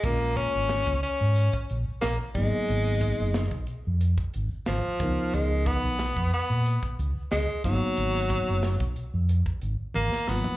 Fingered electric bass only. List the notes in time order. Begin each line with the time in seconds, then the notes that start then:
0.04 A#1
0.55 G#1
0.87 C#2
1.21 G#2
1.71 A#1
1.88 muted fingered electric bass stroke
2.04 A#1
2.21 muted fingered electric bass stroke
2.36 G#1
2.70 G#1
3.20 F#1
3.51 B1
3.87 F2
4.35 G#1
4.53 muted fingered electric bass stroke
4.68 G#1
4.85 muted fingered electric bass stroke
5.00 C#2
5.34 C#2
5.84 B1
6.17 F2
6.50 A#2
6.99 C#2
7.17 muted fingered electric bass stroke
7.33 C#2
7.51 muted fingered electric bass stroke
7.65 G#1
7.98 G#1
8.49 F#1
8.81 B1
9.14 F2
9.62 G#1
9.79 muted fingered electric bass stroke
9.96 G#1
10.13 muted fingered electric bass stroke
10.28 G#1